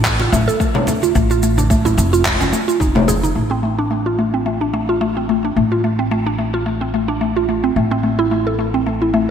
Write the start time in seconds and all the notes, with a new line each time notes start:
Already playing: A1
0.05 A3, kick, clap, cabasa
0.20 F4, muted conga
0.32 A1 A3, low conga, cabasa
0.48 A4, cabasa
0.60 A3, kick, cabasa
0.75 D4, low conga
0.87 A3, muted conga, low conga, cabasa
1.02 F4, high conga, cabasa
1.15 A1 A3, kick, cabasa
1.30 F4, muted conga, cabasa
1.43 A3, cabasa
1.58 D4, high conga, cabasa
1.70 A3, kick, cabasa
1.85 E4, low conga, cabasa
1.97 F1 A3, muted conga, cabasa
2.13 F4, cabasa
2.25 G#3, kick, clap, cabasa
2.40 C#4, high conga, low conga, cabasa
2.52 A3, muted conga, cabasa
2.68 F4, cabasa
2.80 F1 D#4, kick, cabasa
2.95 A3, low conga
3.08 G#4, high conga, low conga, cabasa
3.23 D#4, high conga, cabasa
3.35 A1 A3
3.51 C4
3.63 A3
3.79 D4
3.91 A3
4.06 F4
4.19 A3
4.34 C4
4.46 A3
4.61 D4
4.74 A3
4.89 F4
5.01 A3
5.17 C4
5.29 A3
5.45 D4
5.56 A1 A3
5.72 F4
5.84 A3
5.99 C4
6.11 A3
6.27 D4
6.39 A3
6.54 F4
6.66 A3
6.81 C4
6.94 A3
7.08 D4
7.21 A3
7.37 F4
7.49 A3
7.64 C4
7.76 A1 A3
7.91 C4
8.03 A3
8.19 E4
8.31 A3
8.47 A4
8.59 A3
8.74 C4
8.87 A3
9.02 E4
9.14 A3